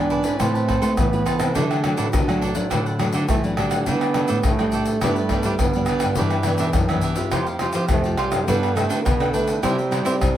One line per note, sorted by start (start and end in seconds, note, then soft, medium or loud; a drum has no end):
0.00 0.37 G#2 medium
0.00 0.21 E3 medium
0.00 0.22 B3 medium
0.00 0.22 D4 medium
0.00 0.41 D4 loud
0.00 0.10 B4 soft
0.00 0.10 D5 medium
0.10 0.24 E4 medium
0.10 0.24 G#4 medium
0.10 0.24 B4 medium
0.10 0.23 D5 medium
0.10 pandeiro soft
0.24 0.63 C4 medium
0.24 0.64 E4 medium
0.24 0.39 G#4 soft
0.24 0.64 B4 medium
0.24 0.39 B4 soft
0.24 0.38 D5 medium
0.24 pandeiro medium
0.24 shaker medium
0.39 0.77 A2 medium
0.39 0.95 A3 medium
0.39 0.99 C4 loud
0.39 0.53 A4 medium
0.39 0.54 B4 medium
0.39 0.54 C5 medium
0.39 0.53 A5 medium
0.39 pandeiro medium
0.39 tamborim medium
0.39 shaker medium
0.39 surdo medium
0.54 0.68 B4 soft
0.54 0.67 C5 soft
0.54 0.68 A5 soft
0.54 pandeiro soft
0.54 shaker soft
0.68 1.07 C4 medium
0.68 1.08 E4 medium
0.68 0.80 A4 soft
0.68 0.81 B4 medium
0.68 1.08 B4 medium
0.68 0.81 C5 medium
0.68 0.81 A5 medium
0.68 pandeiro medium
0.68 tamborim medium
0.68 surdo medium
0.82 0.95 A3 medium
0.82 0.92 A4 medium
0.82 0.92 B4 medium
0.82 0.92 C5 medium
0.82 0.92 A5 medium
0.82 pandeiro medium
0.82 shaker medium
0.97 1.22 A2 medium
0.97 1.53 E3 medium
0.97 1.57 B3 loud
0.97 pandeiro medium
0.97 tamborim medium
0.97 shaker medium
0.97 surdo medium
1.13 1.51 E4 medium
1.13 1.52 B4 medium
1.13 pandeiro soft
1.13 shaker soft
1.25 1.39 A4 medium
1.25 1.39 B4 medium
1.25 1.40 C5 medium
1.25 1.38 A5 medium
1.25 pandeiro medium
1.25 tamborim medium
1.25 shaker medium
1.39 1.52 C3 medium
1.39 1.54 B4 soft
1.39 1.54 C5 soft
1.39 1.54 A5 soft
1.39 pandeiro medium
1.39 tamborim medium
1.39 shaker medium
1.54 2.11 D3 medium
1.54 1.92 D3 medium
1.54 1.80 F#3 medium
1.54 1.85 A3 medium
1.54 1.80 A3 medium
1.54 1.82 D4 medium
1.54 1.80 D4 medium
1.54 1.83 A4 medium
1.54 1.83 D5 medium
1.54 1.84 F#5 medium
1.54 pandeiro medium
1.54 shaker medium
1.54 surdo medium
1.71 pandeiro soft
1.71 tamborim medium
1.71 shaker soft
1.83 3.01 F#3 medium
1.83 2.23 F#3 medium
1.83 2.23 A3 medium
1.83 1.96 D4 soft
1.83 2.23 D4 medium
1.83 1.96 A4 soft
1.83 1.96 D5 medium
1.83 1.97 F#5 medium
1.83 pandeiro medium
1.83 tamborim medium
1.97 2.10 A2 medium
1.97 2.07 D4 medium
1.97 2.07 A4 medium
1.97 2.07 D5 medium
1.97 2.07 F#5 medium
1.97 pandeiro medium
1.97 shaker medium
2.13 2.68 A2 soft
2.13 2.38 D3 medium
2.13 pandeiro medium
2.13 tamborim medium
2.13 shaker medium
2.13 surdo loud
2.28 2.52 F#3 medium
2.28 2.53 A3 medium
2.28 2.53 D4 medium
2.28 2.41 A4 soft
2.28 2.41 D5 soft
2.28 2.41 F#5 soft
2.28 pandeiro soft
2.28 tamborim medium
2.28 shaker soft
2.41 2.55 D4 medium
2.41 2.55 A4 medium
2.41 2.55 D5 medium
2.41 2.54 F#5 medium
2.41 pandeiro medium
2.55 2.66 F#3 medium
2.55 2.66 A3 medium
2.55 2.66 D4 medium
2.55 2.70 A4 soft
2.55 2.70 D5 soft
2.55 2.69 F#5 soft
2.55 pandeiro medium
2.55 shaker medium
2.70 3.08 A2 medium
2.70 3.26 D3 medium
2.70 2.95 F#3 soft
2.70 2.95 A3 medium
2.70 2.84 D4 medium
2.70 2.96 D4 medium
2.70 2.84 A4 medium
2.70 2.85 D5 medium
2.70 2.85 F#5 medium
2.70 pandeiro medium
2.70 tamborim medium
2.70 shaker medium
2.70 surdo medium
2.86 2.99 A4 soft
2.86 2.99 D5 soft
2.86 2.99 F#5 soft
2.86 pandeiro soft
2.86 shaker soft
2.99 3.38 F#3 medium
2.99 3.38 A3 medium
2.99 3.13 D4 soft
2.99 3.38 D4 medium
2.99 3.13 A4 soft
2.99 3.13 D5 medium
2.99 3.14 F#5 medium
2.99 pandeiro medium
2.99 tamborim medium
3.13 3.26 D3 medium
3.13 3.23 D4 medium
3.13 3.23 A4 medium
3.13 3.23 D5 medium
3.13 3.24 F#5 medium
3.13 pandeiro medium
3.13 shaker medium
3.28 3.83 A2 medium
3.28 3.55 E3 medium
3.28 3.42 A3 loud
3.28 pandeiro medium
3.28 tamborim medium
3.28 shaker medium
3.28 surdo medium
3.43 3.82 F#3 medium
3.43 3.82 A3 medium
3.43 3.83 D4 medium
3.43 pandeiro soft
3.43 shaker soft
3.57 3.84 D3 medium
3.57 3.90 G3 medium
3.57 3.71 D4 medium
3.57 3.71 A4 medium
3.57 3.70 D5 medium
3.57 3.69 F#5 medium
3.57 pandeiro medium
3.57 tamborim medium
3.71 3.86 A4 soft
3.71 3.85 D5 soft
3.71 3.85 F#5 soft
3.71 pandeiro medium
3.71 tamborim medium
3.71 shaker medium
3.86 4.41 D3 medium
3.86 4.24 D3 medium
3.86 4.04 G3 medium
3.86 4.04 A3 medium
3.86 4.48 B3 loud
3.86 4.14 D4 medium
3.86 4.04 D4 medium
3.86 4.14 A4 medium
3.86 4.15 D5 medium
3.86 4.15 G5 medium
3.86 pandeiro medium
3.86 shaker medium
3.86 surdo medium
4.01 pandeiro soft
4.01 tamborim medium
4.01 shaker soft
4.14 4.54 G3 soft
4.14 4.54 A3 medium
4.14 4.27 D4 soft
4.14 4.54 D4 medium
4.14 4.27 A4 soft
4.14 4.27 D5 medium
4.14 4.28 G5 medium
4.14 pandeiro medium
4.14 tamborim medium
4.28 4.42 A2 medium
4.28 4.38 D4 medium
4.28 4.38 A4 medium
4.28 4.38 D5 medium
4.28 4.38 G5 medium
4.28 pandeiro medium
4.28 shaker medium
4.43 4.99 A2 medium
4.43 4.69 A2 medium
4.43 5.03 A3 loud
4.43 pandeiro medium
4.43 tamborim medium
4.43 shaker medium
4.43 surdo loud
4.59 4.98 G3 medium
4.59 4.98 A3 medium
4.59 4.98 D4 medium
4.59 4.72 A4 soft
4.59 4.72 D5 soft
4.59 4.72 G5 soft
4.59 pandeiro soft
4.59 tamborim medium
4.59 shaker soft
4.72 4.86 D4 medium
4.72 4.86 A4 medium
4.72 4.86 D5 medium
4.72 4.85 G5 medium
4.72 pandeiro medium
4.72 shaker medium
4.86 5.01 A4 soft
4.86 5.01 D5 soft
4.86 5.00 G5 soft
4.86 pandeiro medium
4.86 shaker medium
5.01 5.39 G2 medium
5.01 5.57 G2 medium
5.01 5.19 G3 medium
5.01 5.63 A3 loud
5.01 5.20 B3 medium
5.01 5.15 D4 medium
5.01 5.20 D4 medium
5.01 5.15 G4 medium
5.01 5.16 B4 medium
5.01 5.16 D5 medium
5.01 pandeiro medium
5.01 tamborim medium
5.01 shaker medium
5.01 surdo medium
5.16 5.30 G4 soft
5.16 5.30 B4 soft
5.16 5.30 D5 soft
5.16 pandeiro soft
5.16 shaker soft
5.29 5.58 G3 medium
5.29 5.58 B3 medium
5.29 5.44 D4 soft
5.29 5.58 D4 medium
5.29 5.44 G4 medium
5.29 5.44 B4 medium
5.29 5.45 D5 medium
5.29 pandeiro medium
5.29 tamborim medium
5.29 surdo medium
5.43 5.57 G3 medium
5.43 5.54 D4 medium
5.43 5.54 G4 medium
5.43 5.54 B4 medium
5.43 5.54 D5 medium
5.43 pandeiro medium
5.43 shaker medium
5.59 5.85 G2 medium
5.59 6.15 D3 medium
5.59 6.20 B3 loud
5.59 pandeiro medium
5.59 tamborim medium
5.59 shaker medium
5.59 surdo medium
5.73 6.13 G3 medium
5.73 6.14 B3 medium
5.73 6.14 D4 medium
5.73 pandeiro soft
5.73 shaker soft
5.86 6.01 D4 medium
5.86 6.02 G4 medium
5.86 6.01 B4 medium
5.86 6.01 D5 medium
5.86 pandeiro medium
5.86 tamborim medium
5.86 shaker medium
6.00 6.15 G2 medium
6.00 6.16 G4 soft
6.00 6.16 B4 soft
6.00 6.16 D5 soft
6.00 pandeiro medium
6.00 tamborim medium
6.00 shaker medium
6.15 6.72 G2 medium
6.15 6.55 G2 medium
6.15 6.34 E3 medium
6.15 7.04 E3 medium
6.15 6.34 B3 medium
6.15 6.44 D4 medium
6.15 6.35 D4 medium
6.15 6.45 G4 medium
6.15 6.45 B4 medium
6.15 6.45 E5 medium
6.15 pandeiro medium
6.15 shaker medium
6.15 surdo medium
6.30 pandeiro soft
6.30 tamborim medium
6.30 shaker soft
6.43 6.84 E3 medium
6.43 6.85 B3 medium
6.43 6.58 D4 medium
6.43 6.85 D4 medium
6.43 6.58 G4 soft
6.43 6.58 B4 soft
6.43 6.59 E5 soft
6.43 pandeiro medium
6.43 tamborim medium
6.43 shaker medium
6.58 6.72 B2 medium
6.58 6.69 D4 medium
6.58 6.69 G4 medium
6.58 6.69 B4 medium
6.58 6.69 E5 medium
6.58 pandeiro medium
6.58 shaker medium
6.73 7.00 F#2 loud
6.73 7.30 G2 medium
6.73 pandeiro medium
6.73 tamborim medium
6.73 shaker medium
6.73 surdo loud
6.89 7.14 E3 medium
6.89 7.14 B3 medium
6.89 7.14 D4 medium
6.89 7.02 G4 soft
6.89 7.02 B4 soft
6.89 7.02 E5 medium
6.89 pandeiro soft
6.89 tamborim medium
6.89 shaker soft
7.01 7.16 D4 medium
7.01 7.17 G4 medium
7.01 7.16 B4 medium
7.01 7.15 E5 medium
7.01 pandeiro medium
7.01 shaker medium
7.16 7.56 C4 medium
7.16 7.56 F4 medium
7.16 7.56 G4 medium
7.16 7.31 G4 soft
7.16 7.31 B4 soft
7.16 7.30 E5 soft
7.16 pandeiro medium
7.16 shaker medium
7.31 7.70 F2 medium
7.31 7.87 F3 medium
7.31 7.45 F4 medium
7.31 7.45 G4 medium
7.31 7.46 C5 medium
7.31 7.46 F5 medium
7.31 pandeiro medium
7.31 tamborim medium
7.31 shaker medium
7.31 surdo medium
7.46 7.60 G4 soft
7.46 7.61 C5 soft
7.46 7.60 F5 soft
7.46 pandeiro soft
7.46 shaker soft
7.59 8.00 C4 medium
7.59 7.73 F4 medium
7.59 8.00 F4 medium
7.59 7.74 G4 medium
7.59 8.00 G4 medium
7.59 7.74 C5 medium
7.59 7.74 F5 medium
7.59 pandeiro medium
7.59 tamborim medium
7.73 7.87 F3 medium
7.73 7.84 F4 medium
7.73 7.84 G4 medium
7.73 7.84 C5 medium
7.73 7.84 F5 medium
7.73 pandeiro medium
7.73 shaker medium
7.88 8.15 F2 medium
7.88 8.45 C3 medium
7.88 8.20 A3 loud
7.88 pandeiro medium
7.88 tamborim medium
7.88 shaker medium
7.88 surdo loud
8.04 8.43 C4 medium
8.04 8.44 F4 medium
8.04 8.44 G4 medium
8.04 pandeiro soft
8.04 shaker soft
8.17 8.49 G3 medium
8.17 8.32 F4 medium
8.17 8.32 G4 medium
8.17 8.32 C5 medium
8.17 8.31 F5 medium
8.17 pandeiro medium
8.17 tamborim medium
8.32 8.45 F#2 medium
8.32 8.47 G4 soft
8.32 8.46 C5 soft
8.32 8.46 F5 soft
8.32 pandeiro medium
8.32 tamborim medium
8.32 shaker medium
8.47 8.85 G2 loud
8.47 9.02 G3 medium
8.47 8.72 B3 medium
8.47 8.78 B3 loud
8.47 8.74 D4 medium
8.47 8.72 D4 medium
8.47 8.72 A4 medium
8.47 8.75 A4 medium
8.47 8.75 B4 medium
8.47 8.76 G5 medium
8.47 pandeiro medium
8.47 shaker medium
8.47 surdo medium
8.63 pandeiro soft
8.63 tamborim medium
8.63 shaker soft
8.75 9.06 A3 loud
8.75 9.03 B3 medium
8.75 8.88 D4 soft
8.75 9.03 D4 medium
8.75 8.89 A4 soft
8.75 9.03 A4 medium
8.75 8.89 B4 soft
8.75 8.89 G5 medium
8.75 pandeiro medium
8.75 tamborim medium
8.75 shaker medium
8.89 9.02 D3 medium
8.89 8.99 D4 medium
8.89 8.99 A4 medium
8.89 9.00 B4 medium
8.89 9.00 G5 medium
8.89 pandeiro medium
8.89 shaker medium
9.05 9.30 B2 loud
9.05 9.60 D3 medium
9.05 9.33 B3 medium
9.05 pandeiro medium
9.05 tamborim medium
9.05 shaker medium
9.05 surdo loud
9.19 9.58 B3 medium
9.19 9.59 D4 medium
9.19 9.59 A4 medium
9.19 9.32 A4 soft
9.19 9.33 B4 soft
9.19 9.34 G5 medium
9.19 pandeiro soft
9.19 tamborim medium
9.19 shaker soft
9.33 9.66 A3 medium
9.33 9.47 D4 medium
9.33 9.47 A4 medium
9.33 9.48 B4 medium
9.33 9.47 G5 medium
9.33 pandeiro medium
9.33 shaker medium
9.48 9.62 A4 soft
9.48 9.62 B4 soft
9.48 9.62 G5 soft
9.48 pandeiro medium
9.48 shaker medium
9.62 10.17 C3 medium
9.62 10.00 C3 medium
9.62 9.80 G3 medium
9.62 10.37 G3 loud
9.62 9.80 C4 medium
9.62 9.76 E4 medium
9.62 9.80 E4 medium
9.62 9.76 G4 medium
9.62 9.77 C5 medium
9.62 9.76 E5 medium
9.62 pandeiro medium
9.62 tamborim medium
9.62 shaker medium
9.62 surdo medium
9.78 9.91 G4 soft
9.78 9.91 C5 soft
9.78 9.91 E5 medium
9.78 pandeiro soft
9.78 shaker soft
9.91 10.18 G3 medium
9.91 10.19 C4 medium
9.91 10.03 E4 medium
9.91 10.19 E4 medium
9.91 10.04 G4 soft
9.91 10.05 C5 medium
9.91 10.05 E5 medium
9.91 pandeiro medium
9.91 tamborim medium
9.91 shaker medium
10.05 10.18 C4 medium
10.05 10.14 E4 medium
10.05 10.15 G4 medium
10.05 10.15 C5 medium
10.05 10.15 E5 medium
10.05 pandeiro medium
10.05 shaker medium
10.19 10.37 G2 medium
10.19 10.37 C3 medium
10.19 pandeiro medium
10.19 tamborim medium
10.19 shaker medium
10.19 surdo medium